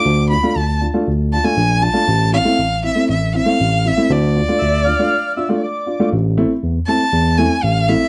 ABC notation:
X:1
M:4/4
L:1/16
Q:1/4=118
K:Dm
V:1 name="Violin"
d'2 =b2 a2 z4 a ^g3 a2- | a2 f4 e2 e2 f4 e2 | d12 z4 | z6 a4 ^g2 f2 e2 |]
V:2 name="Accordion"
z16 | z16 | z4 e2 f4 e2 d4 | z16 |]
V:3 name="Upright piano"
z2 [DF] [A,DF] z2 [DF] [A,DF] z2 [DF] [A,DF] z2 [DF] [A,DF] | z2 [CE] [A,CE] z2 [CE] [A,CE] z2 [CE] [A,CE] z2 [CE] [A,CE] | z2 [DF] [A,DF] z2 [DF] [A,DF] z2 [DF] [A,DF] z2 [DF] [A,DF] | z2 [A,CE] z3 [A,CE] z3 [A,CE] z3 [A,CE] z |]
V:4 name="Tine electric piano" clef=bass
D,,4 D,,4 D,,4 B,,,4 | A,,,4 A,,,4 A,,,4 A,,,4 | D,,4 D,,4 z8 | A,,,4 E,,2 z2 E,,4 A,,,4 |]